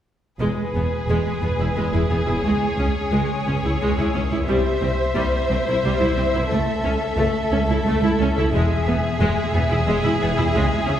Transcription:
0.40 double bass section E1, cello section E2, viola section G#3, violin section G#4 B4
0.75 double bass section E1, cello section E2, viola section B3
1.08 double bass section E1, cello section E2, viola section G#3
1.42 double bass section E1, cello section E2, viola section B3
1.59 double bass section E1, cello section E2, viola section E4
1.76 double bass section E1, cello section E2, viola section G#3
1.93 double bass section E1, cello section E2, viola section E4
2.10 double bass section E1, cello section E2, viola section B3
2.27 double bass section E1, cello section E2, viola section E4
2.44 double bass section C#2, cello section C#2, viola section G#3, violin section C#5
2.78 cello section C#2, double bass section C#2, viola section C#4
3.11 cello section C#2, double bass section C#2, viola section G#3
3.46 cello section C#2, double bass section C#2, viola section C#4
3.63 cello section C#2, double bass section C#2, viola section E4
3.81 cello section C#2, double bass section C#2, viola section G#3
3.97 cello section C#2, double bass section C#2, viola section E4
4.14 cello section C#2, double bass section C#2, viola section C#4
4.31 cello section C#2, double bass section C#2, viola section E4
4.48 cello section C2, double bass section C2, viola section G3, violin section C5 E5
4.82 cello section C2, double bass section C2, viola section C4
5.15 cello section C2, double bass section C2, viola section G3
5.50 cello section C2, double bass section C2, viola section C4
5.67 cello section C2, double bass section C2, viola section E4
5.84 double bass section C2, cello section C2, viola section G3
6.00 cello section C2, double bass section C2, viola section E4
6.17 double bass section C2, cello section C2, viola section C4
6.34 double bass section C2, cello section C2, viola section E4
6.50 double bass section C#2, cello section C#2, viola section A3, violin section A4
6.84 double bass section C#2, cello section C#2, viola section C#4
7.17 cello section C#2, double bass section C#2, viola section A3
7.51 cello section C#2, double bass section C#2, viola section C#4
7.68 cello section C#2, double bass section C#2, viola section E4
7.84 cello section C#2, double bass section C#2, viola section A3
8.01 cello section C#2, double bass section C#2, viola section E4
8.19 cello section C#2, double bass section C#2, viola section C#4
8.36 double bass section C#2, cello section C#2, viola section E4
8.51 double bass section E1, cello section E2, timpani E2, viola section G#3, violin section G#4 E5
8.87 double bass section E1, cello section E2, viola section B3
9.20 double bass section E1, cello section E2, viola section G#3
9.54 double bass section E1, cello section E2, viola section B3
9.69 double bass section E1, cello section E2, viola section E4
9.87 double bass section E1, cello section E2, viola section G#3
10.04 double bass section E1, cello section E2, viola section E4
10.21 double bass section E1, cello section E2, viola section B3
10.37 double bass section E1, cello section E2, viola section E4
10.55 double bass section C#2, cello section C#3, viola section G#3
10.88 double bass section C#2, cello section C#3, viola section C#4

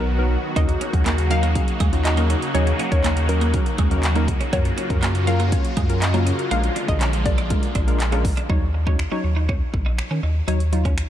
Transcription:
Already playing: sub bass B1, supersaw synth D#3 F#3 B3 F#4
0.19 synth stab F#3 B3 D#4 A#4
0.56 sub bass D#2, supersaw synth C#3 A#3 D#4, synth stab F#3 C#4 D#4 A#4, clean electric guitar D#4, synth pluck D#5, kick, closed hi-hat
0.69 muted clean electric guitar stroke, closed hi-hat
0.81 clean electric guitar C#4, closed hi-hat
0.93 sub bass D#2, synth stab F#3 C#4 D#4 F#4, kick, closed hi-hat
1.06 clean electric guitar A#3, clap, closed hi-hat
1.18 muted clean electric guitar stroke, closed hi-hat
1.30 synth stab F#3 C#4 D#4 A#4, synth pluck F5, closed hi-hat
1.43 clean electric guitar A#3, closed hi-hat
1.55 synth stab F#3 C#4 D#4 G#4, kick, closed hi-hat
1.68 closed hi-hat
1.80 sub bass D#2, clean electric guitar G#3, kick, closed hi-hat
1.92 synth stab F#3 C#4 D#4 F4, closed hi-hat
2.05 synth pluck D#5, muted clean electric guitar stroke, clap, closed hi-hat
2.17 synth stab F#3 C#4 D#4 A#4, clean electric guitar A#3, closed hi-hat
2.30 clean electric guitar C#4, closed hi-hat
2.42 closed hi-hat
2.54 sub bass D#2, synth stab F#3 C#4 D#4 G#4, clean electric guitar D#4, synth pluck C#5, closed hi-hat
2.67 muted clean electric guitar stroke, closed hi-hat
2.79 clean electric guitar C#4, closed hi-hat
2.92 sub bass D#2, synth stab F#3 C#4 D#4 A#4, synth pluck C#5, kick, closed hi-hat
3.04 clean electric guitar A#3, clap, closed hi-hat
3.17 muted clean electric guitar stroke, closed hi-hat
3.29 synth stab F#3 C#4 D#4 A#4, synth pluck A#4, closed hi-hat
3.41 clean electric guitar A#3, closed hi-hat
3.54 synth stab F#3 C#4 D#4 A#4, kick, closed hi-hat
3.66 closed hi-hat
3.78 sub bass D#2, clean electric guitar G#3, kick, closed hi-hat
3.91 synth stab F#3 C#4 D#4 A#4, closed hi-hat
4.03 clap, closed hi-hat
4.16 synth stab F#3 C#4 D#4 A#4, clean electric guitar A#3, closed hi-hat
4.28 muted clean electric guitar stroke, kick, closed hi-hat
4.41 clean electric guitar C#4, closed hi-hat
4.53 sub bass F#2, synth stab F#3 C#4 F4 A#4, supersaw synth F4, clean electric guitar F#4, synth pluck C#5, kick, closed hi-hat
4.65 muted clean electric guitar stroke, closed hi-hat
4.78 clean electric guitar C#4, closed hi-hat
4.90 sub bass F#2, synth stab F#3 C#4 F4 A#4, kick, closed hi-hat
5.03 clean electric guitar A#3, clap, closed hi-hat
5.15 muted clean electric guitar stroke, closed hi-hat
5.27 synth stab F#3 C#4 F4 A#4, synth pluck F5, closed hi-hat
5.40 clean electric guitar A#3, closed hi-hat
5.52 synth stab F#3 C#4 F4 C#5, kick, closed hi-hat
5.65 closed hi-hat
5.77 sub bass F#2, clean electric guitar G#3, kick, closed hi-hat
5.89 synth stab F#3 C#4 F4 A#4, closed hi-hat
6.02 synth pluck D#5, muted clean electric guitar stroke, clap, closed hi-hat
6.14 synth stab F#3 C#4 F4 A#4, clean electric guitar A#3, closed hi-hat
6.26 clean electric guitar C#4, closed hi-hat
6.39 closed hi-hat
6.51 sub bass A#1, supersaw synth D3 F3 G#3, synth stab G#3 D4 F4 A#4, clean electric guitar A#3, synth pluck F5, closed hi-hat
6.64 muted clean electric guitar stroke, closed hi-hat
6.76 clean electric guitar D4, closed hi-hat
6.88 sub bass A#1, synth stab G#3 D4 F4 A#4, synth pluck D#5, kick, closed hi-hat
7.01 clean electric guitar C#4, clap, closed hi-hat
7.13 muted clean electric guitar stroke, closed hi-hat
7.26 synth stab G#3 D4 F4 A#4, synth pluck D5, kick, closed hi-hat
7.38 clean electric guitar D4, closed hi-hat
7.50 synth stab G#3 D4 F4 A#4, kick, closed hi-hat
7.63 closed hi-hat
7.75 sub bass A#1, clean electric guitar D4, kick, closed hi-hat
7.87 synth stab G#3 D4 F4 A#4, closed hi-hat
8.00 clap, closed hi-hat
8.12 synth stab G#3 D4 F4 A#4, clean electric guitar C#4, closed hi-hat
8.25 muted clean electric guitar stroke, kick, open hi-hat
8.37 clean electric guitar D4, closed hi-hat
8.49 sub bass D#2, synth stab F#3 D#4 C#5, clean electric guitar D#4, kick
8.74 muted clean electric guitar stroke
8.87 synth stab F#3 D#4 C#5, clean electric guitar C#4, kick
8.99 finger snap
9.12 synth stab F#3 D#4 C#5, clean electric guitar C#4
9.24 sub bass D#2, muted clean electric guitar stroke
9.36 clean electric guitar D#4
9.49 clean electric guitar C#4, kick
9.74 sub bass A#1, muted clean electric guitar stroke, kick
9.86 clean electric guitar D#4
9.98 finger snap, muted clean electric guitar stroke
10.11 sub bass D#3, clean electric guitar C#4
10.23 sub bass D#2, clean electric guitar D#4
10.48 sub bass D#2, synth stab F#3 D#4 C#5, clean electric guitar D#4, closed hi-hat
10.60 closed hi-hat
10.72 synth stab F#3 D#4 F4, muted clean electric guitar stroke, closed hi-hat
10.85 clean electric guitar C#4, kick, closed hi-hat
10.98 finger snap, closed hi-hat

